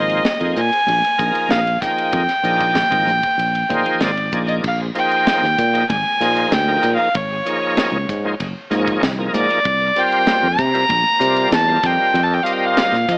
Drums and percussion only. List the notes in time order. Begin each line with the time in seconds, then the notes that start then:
0.10 ride
0.25 snare, ride, high conga
0.41 ride
0.56 hi-hat pedal, muted conga
0.73 ride
0.87 ride, muted conga, high conga
1.04 ride
1.18 kick, hi-hat pedal, muted conga
1.35 ride
1.49 snare, ride, high conga
1.67 ride
1.82 kick, snare, hi-hat pedal
1.98 ride
2.13 kick, ride, muted conga
2.29 snare, ride
2.44 hi-hat pedal
2.60 kick, ride
2.75 snare, ride, high conga, low conga
2.92 kick, ride
3.07 hi-hat pedal, muted conga, high conga
3.23 kick, ride
3.39 ride, muted conga
3.55 ride
3.70 kick, hi-hat pedal, muted conga, low conga
3.86 ride
4.01 snare, ride, high conga
4.17 ride
4.32 kick, hi-hat pedal
4.49 ride
4.64 kick, crash, muted conga
4.95 hi-hat pedal, ride
5.12 ride
5.27 snare, ride, high conga
5.44 snare
5.58 kick, hi-hat pedal, ride
5.75 ride
5.90 kick, ride, muted conga, high conga
6.21 snare, hi-hat pedal, ride, muted conga
6.36 ride
6.52 snare, ride, high conga
6.83 hi-hat pedal, ride, muted conga
7.15 kick, ride, muted conga
7.46 hi-hat pedal, ride
7.77 snare, ride, high conga
8.09 kick, hi-hat pedal, ride
8.40 kick, ride, muted conga
8.71 snare, hi-hat pedal, ride, muted conga, high conga
8.88 kick, ride
9.03 snare, ride, low conga
9.34 hi-hat pedal, ride, muted conga, high conga
9.50 ride
9.65 kick, ride
9.96 hi-hat pedal, ride
10.12 ride
10.27 snare, ride, high conga
10.59 kick, hi-hat pedal, ride
10.75 ride
10.89 kick, ride, muted conga, high conga
11.20 hi-hat pedal, ride, muted conga
11.36 ride
11.51 snare, ride, high conga
11.82 kick, hi-hat pedal, ride, muted conga
12.14 ride, muted conga
12.46 hi-hat pedal, ride
12.77 snare, ride, high conga
12.93 snare
13.09 kick, snare, hi-hat pedal, ride